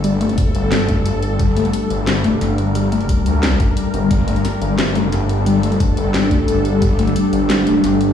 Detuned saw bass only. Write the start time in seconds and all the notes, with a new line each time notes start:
Already playing: G1
0.55 G1
1.06 G1
1.40 G1
1.90 G1
2.41 G1
3.26 D2
3.94 G1
4.11 G1
4.61 G1
5.12 G1
5.71 F#1
5.97 G1
6.48 G1
6.82 G1
7.33 G1
7.84 G1